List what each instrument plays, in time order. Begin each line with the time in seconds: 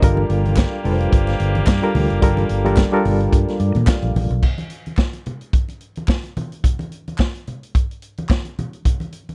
Already playing: french horn section G3 D5, reed electric piano D#5
0.02 fingered electric bass G1, reed electric piano G3 D4 F4 A4 A#4, french horn section A#3 F4 G4, kick, closed hi-hat, low conga
0.17 high conga
0.30 fingered electric bass G1, closed hi-hat
0.45 closed hi-hat, high conga
0.57 kick, snare, clap, closed hi-hat, muted conga
0.84 fingered electric bass F1, reed electric piano G3 D4 F4 A4 B4, open hi-hat, low conga
0.92 reed electric piano C5
1.00 closed hi-hat
1.12 fingered electric bass G1, kick, closed hi-hat, muted conga
1.27 snare, closed hi-hat, muted conga
1.39 fingered electric bass G1, closed hi-hat
1.55 closed hi-hat, high conga
1.67 fingered electric bass G2, kick, snare, clap, closed hi-hat, muted conga
1.82 reed electric piano G3 D4 F4 A4 A#4, closed hi-hat, muted conga
1.95 fingered electric bass D2, open hi-hat, high conga, low conga
2.10 fingered electric bass F#1, closed hi-hat
2.22 fingered electric bass G1, reed electric piano G3 D4 F4 A4 A#4, kick, closed hi-hat, muted conga, low conga
2.37 closed hi-hat, high conga
2.49 fingered electric bass G1, closed hi-hat
2.65 reed electric piano G3 D4 F4 A4 A#4, closed hi-hat, high conga
2.77 kick, snare, clap, closed hi-hat, muted conga
2.92 reed electric piano G3 D4 F4 A4 A#4
3.05 fingered electric bass G1, open hi-hat, low conga
3.20 closed hi-hat
3.32 fingered electric bass G2, kick, closed hi-hat, muted conga
3.48 snare, closed hi-hat
3.60 fingered electric bass G2, reed electric piano D5, closed hi-hat
3.75 fingered electric bass A#2, closed hi-hat, high conga
3.87 reed electric piano F5, kick, snare, clap, closed hi-hat, muted conga
4.02 fingered electric bass A#1, closed hi-hat, muted conga
4.15 fingered electric bass A#1, open hi-hat, high conga, low conga
4.30 fingered electric bass B1, closed hi-hat
4.43 kick, crash, muted conga, low conga
4.58 closed hi-hat, muted conga, high conga
4.70 closed hi-hat
4.86 closed hi-hat, high conga
4.97 kick, snare, clap
5.13 closed hi-hat, muted conga
5.26 closed hi-hat, low conga
5.41 closed hi-hat
5.53 kick, closed hi-hat, muted conga
5.69 closed hi-hat, muted conga
5.81 closed hi-hat
5.96 closed hi-hat, high conga
6.08 kick, snare, clap
6.24 closed hi-hat, muted conga
6.37 closed hi-hat, high conga, low conga
6.52 closed hi-hat
6.64 kick, closed hi-hat, muted conga, low conga
6.79 closed hi-hat, muted conga, high conga
6.92 closed hi-hat
7.07 closed hi-hat, high conga
7.18 kick, snare, clap, muted conga
7.35 closed hi-hat
7.47 closed hi-hat, low conga
7.63 closed hi-hat
7.75 kick, closed hi-hat
7.91 closed hi-hat
8.02 closed hi-hat
8.17 closed hi-hat, high conga
8.29 kick, snare, clap, muted conga
8.45 closed hi-hat, muted conga
8.58 closed hi-hat, high conga, low conga
8.73 closed hi-hat
8.85 kick, closed hi-hat, muted conga, low conga
9.00 closed hi-hat, high conga
9.12 closed hi-hat
9.29 closed hi-hat, high conga